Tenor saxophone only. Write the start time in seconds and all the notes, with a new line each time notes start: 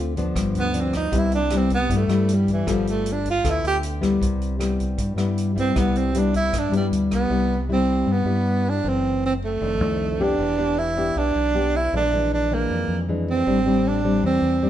0.59 B3
0.80 C4
0.96 D#4
1.18 E4
1.35 D4
1.57 C4
1.74 B3
1.97 A3
2.35 G3
2.52 E3
2.72 F3
2.90 A3
3.13 D4
3.30 F4
3.50 E4
3.67 G4
5.59 C4
5.79 B3
5.97 C4
6.18 D4
6.36 E4
6.59 D4
6.77 G3
7.14 B3
7.72 C4
8.12 B3
8.70 D4
8.89 C4
9.26 C4
9.44 A3
10.23 D4
10.78 E4
11.18 D4
11.76 E4
11.96 D4
12.34 D4
12.54 A#3
13.30 C4
13.88 D4
14.26 C4